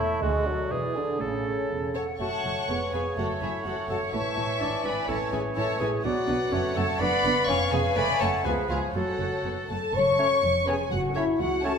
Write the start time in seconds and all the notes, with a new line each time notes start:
Already playing: E1 E2 A3 E4 C#5 E5
0.00 E4 A4
0.22 D2 G#3 F#4 A4 D5
0.47 F#3 D4 A4 D5
0.71 E1 E2 E3 G#4 D5
0.96 D3 D4 G#4 B4
1.20 A1 A2 C#3 A4 C#5
1.46 C#4 A4 C#5
1.70 E1 E2
1.94 C#4 A4 C#5 F#5 A5
2.19 F#1 F#2 A3 F#4 C#5 F#5 A5 C#6
2.44 F#1 F#2 A3 F#4
2.68 F1 F2 B3 G#4
2.92 F1 F2 B3 G#4 B4 F5 G#5
3.16 F#1 F#2 A3 F#4 A4 C#5 F#5
3.41 F#1 F#2 A3 E4 F#4 G#4 C#5 E5
3.65 F#1 F#2 A3 F#4 A4 C#5 F#5
3.89 F#1 F#2 A3 F#4 A4 C#5 F#5 A5
4.12 A1 A2 E3 A3 E4 C#5 E5 A5 C#6
4.37 A1 A2 A3 E4
4.61 G#1 G#2 D4 E4 D5
4.84 G#1 G#2 D4 E4 B4 D5 G#5 B5
5.08 A1 A2 C#4 E4 A4 C#5 E5 A5
5.32 A1 A2 C#4 E4 G#4 B4 E5 G#5
5.55 A1 A2 C#4 E4 A4 C#5 E5 A5
5.79 A1 A2 C#4 E4 G#4 B4 E5 G#5
6.03 B1 B2 F#3 B3 D4 F#4 B4 D5 F#5
6.28 B1 B2 B3 D4
6.51 F#1 F#2 A3 C#4 C#5
6.76 F#1 F#2 A3 C#4 A4 C#5 F#5 A5
7.01 F#1 F#2 B3 D4 B4 D5 F#5 B5
7.24 F#1 F#2 B3 D4
7.48 F1 F2 B3 C#4 C#5 F5 G#5 C#6
7.72 F1 F2 B3 C#4 G#4 B4 F5 G#5
7.96 F#1 F#2 A3 C#4 B4 D5 G#5 B5
8.19 F#1 F#2 A3 C#4 A4 C#5 F#5 A5
8.44 C#2 F3 B3 F4 G#4 B4 F5 G#5
8.69 C#2 B3 F4 G#4 C#5 F5
8.94 F#1 F#2 F#3 A3 F#4 A4 C#5 F#5
9.20 F#1 F#2 A3 F#4
9.45 F#1 F#2 B3
9.70 F#1 F#2 A3 A4 A5
9.94 F#1 F#2 C#5 C#6
10.19 A3 C#4 A4 C#5
10.43 F1 F2
10.67 B3 C#4 G#4 B4 C#5 G#5
10.91 F#1 F#2 F#4 F#5
11.15 A3 C#4 E4 A4 C#5 E5
11.39 C#2 F#4 F#5
11.63 A3 C#4 A4 C#5 A5